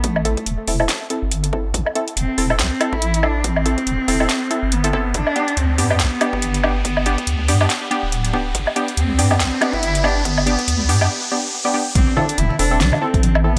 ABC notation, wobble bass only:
X:1
M:4/4
L:1/16
Q:"Swing 16ths" 1/4=141
K:Am
V:1 name="Wobble bass" clef=bass
A,,,3 z E,,, z E,,,2 z3 G,,,4- G,,, | A,,, z3 E,,, z E,,,2 C,, z2 A,,,4- A,,,- | A,,,3 z E,,, z E,,,2 z3 G,,,4- G,,, | G,,, z3 D,,2 G,,2 B,,, z2 G,,,4- G,,,- |
G,,,3 z D,,2 G,,2 z3 D,,,4- D,,, | G,,, z3 D,,2 G,,2 B,,, z2 G,,,4- G,,,- | G,,,3 z D,,2 G,,2 z8 | A,,, z3 E,,, z E,,,2 C,, z2 A,,,4- A,,, |]